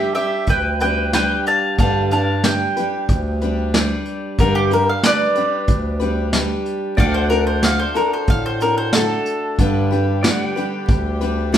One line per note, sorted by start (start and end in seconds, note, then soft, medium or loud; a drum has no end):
0.00 0.16 G3 medium
0.00 0.16 D4 medium
0.00 0.13 G4 medium
0.00 0.15 G4 medium
0.00 0.14 B4 medium
0.00 6.95 D5 medium
0.00 0.14 E5 medium
0.00 6.95 G5 medium
0.15 0.82 G3 soft
0.15 0.83 D4 soft
0.15 0.46 G4 medium
0.15 0.81 G4 medium
0.15 0.80 B4 medium
0.15 0.47 E5 medium
0.15 closed hi-hat medium
0.47 1.41 D2 medium
0.47 0.79 B4 medium
0.47 0.80 G5 medium
0.47 kick medium
0.47 closed hi-hat medium
0.80 1.12 G3 soft
0.80 1.14 D4 soft
0.80 1.14 G4 medium
0.80 1.11 B4 medium
0.80 1.14 B4 medium
0.80 1.13 G5 medium
0.80 closed hi-hat medium
1.13 1.79 G3 medium
1.13 1.80 D4 medium
1.13 1.80 G4 medium
1.13 1.44 B4 medium
1.13 1.46 G5 medium
1.13 snare loud
1.13 closed hi-hat medium
1.17 1.80 B4 medium
1.46 1.77 F5 medium
1.46 1.78 A5 medium
1.46 closed hi-hat medium
1.78 2.72 G2 medium
1.78 2.11 G2 medium
1.78 2.11 D3 medium
1.78 2.12 G3 medium
1.78 2.12 D4 medium
1.78 2.11 G4 medium
1.78 2.10 B4 medium
1.78 2.09 F5 medium
1.78 2.11 A5 medium
1.78 kick loud
1.78 closed hi-hat medium
2.11 2.42 G3 soft
2.11 2.43 D4 soft
2.11 2.44 G4 soft
2.11 2.44 B4 medium
2.11 2.42 F5 medium
2.11 2.43 A5 medium
2.11 closed hi-hat medium
2.43 2.76 G3 medium
2.43 2.76 D4 medium
2.43 2.76 G4 medium
2.43 2.75 B4 medium
2.43 3.70 G5 loud
2.43 snare loud
2.43 closed hi-hat medium
2.76 3.43 G3 soft
2.76 3.43 D4 soft
2.76 3.41 G4 medium
2.76 3.40 B4 medium
2.76 closed hi-hat medium
3.09 4.02 D2 medium
3.09 kick loud
3.09 closed hi-hat medium
3.41 3.73 G3 medium
3.41 3.74 D4 medium
3.41 3.74 G4 medium
3.41 3.74 B4 medium
3.41 closed hi-hat medium
3.74 4.39 G3 medium
3.74 4.41 D4 medium
3.74 4.40 G4 medium
3.74 4.40 B4 medium
3.74 snare loud
3.74 closed hi-hat medium
4.06 closed hi-hat medium
4.38 5.12 G2 medium
4.38 4.72 G2 medium
4.38 4.72 D3 medium
4.38 4.72 G3 medium
4.38 4.72 D4 medium
4.38 4.71 G4 medium
4.38 4.54 A#4 medium
4.38 4.70 B4 medium
4.38 kick loud
4.38 closed hi-hat medium
4.55 4.70 G4 medium
4.71 5.02 G3 soft
4.71 5.03 D4 soft
4.71 5.03 G4 soft
4.71 4.87 A#4 medium
4.71 5.04 B4 medium
4.71 closed hi-hat medium
4.89 5.04 F5 medium
5.03 5.36 G3 medium
5.03 5.36 D4 medium
5.03 5.35 G4 medium
5.03 6.31 B4 medium
5.03 5.34 B4 medium
5.03 6.31 D5 medium
5.03 snare loud
5.03 closed hi-hat medium
5.35 6.02 G3 soft
5.35 6.01 D4 medium
5.35 6.00 G4 soft
5.35 5.98 B4 soft
5.35 closed hi-hat medium
5.68 6.62 D2 medium
5.68 kick loud
5.68 closed hi-hat medium
6.00 6.32 G3 medium
6.00 6.32 D4 medium
6.00 6.33 G4 medium
6.00 6.33 B4 medium
6.00 closed hi-hat medium
6.33 6.97 G3 medium
6.33 6.97 D4 medium
6.33 6.98 G4 medium
6.33 6.98 B4 medium
6.33 snare loud
6.33 closed hi-hat medium
6.66 closed hi-hat medium
6.97 7.92 D2 medium
6.97 7.30 D3 medium
6.97 7.31 A3 medium
6.97 7.31 D4 medium
6.97 7.30 F#4 medium
6.97 7.28 A4 medium
6.97 9.56 D5 medium
6.97 7.14 F5 loud
6.97 7.18 G5 medium
6.97 kick loud
6.97 closed hi-hat medium
7.14 7.29 C5 medium
7.14 9.56 F#5 medium
7.29 7.62 D4 soft
7.29 7.64 F#4 soft
7.29 7.63 A4 medium
7.29 7.46 A#4 medium
7.29 closed hi-hat medium
7.47 7.62 C5 medium
7.62 7.96 A3 medium
7.62 7.96 D4 medium
7.62 7.94 F#4 medium
7.62 7.93 A4 medium
7.62 7.79 F5 loud
7.62 snare loud
7.62 closed hi-hat medium
7.79 7.95 C5 medium
7.94 8.63 D4 soft
7.94 8.60 F#4 medium
7.94 8.59 A4 medium
7.94 8.12 A#4 medium
7.94 closed hi-hat medium
8.13 8.28 C5 medium
8.27 9.22 A2 medium
8.27 8.45 F5 medium
8.27 kick loud
8.27 closed hi-hat medium
8.46 8.61 C5 medium
8.60 8.94 D4 soft
8.60 8.94 F#4 medium
8.60 8.93 A4 soft
8.60 8.77 A#4 medium
8.60 closed hi-hat medium
8.78 8.93 C5 medium
8.93 9.59 A3 medium
8.93 9.60 D4 medium
8.93 9.60 F#4 medium
8.93 9.57 A4 medium
8.93 snare loud
8.93 closed hi-hat medium
8.97 9.61 A4 medium
9.26 closed hi-hat medium
9.58 10.33 G2 loud
9.58 9.92 G2 medium
9.58 11.58 D3 medium
9.58 9.91 D3 medium
9.58 11.58 G3 medium
9.58 9.92 G3 medium
9.58 11.58 B3 medium
9.58 9.92 D4 medium
9.58 11.58 G4 medium
9.58 9.91 G4 medium
9.58 9.89 B4 medium
9.58 kick loud
9.58 closed hi-hat medium
9.91 10.22 G3 soft
9.91 10.23 D4 soft
9.91 10.24 G4 medium
9.91 10.24 B4 medium
9.91 closed hi-hat medium
10.23 10.56 G3 medium
10.23 10.57 D4 medium
10.23 10.56 G4 medium
10.23 10.55 B4 medium
10.23 11.58 D5 medium
10.23 10.45 F#5 medium
10.23 snare loud
10.23 closed hi-hat medium
10.45 11.58 G5 medium
10.56 11.22 G3 soft
10.56 11.22 D4 soft
10.56 11.20 G4 medium
10.56 11.20 B4 medium
10.56 closed hi-hat medium
10.88 11.58 D2 medium
10.88 kick loud
10.88 closed hi-hat medium
11.21 11.51 G3 soft
11.21 11.52 D4 medium
11.21 11.54 G4 medium
11.21 11.54 B4 medium
11.21 closed hi-hat medium
11.52 11.58 G3 medium
11.52 11.58 D4 medium
11.52 snare loud
11.52 closed hi-hat medium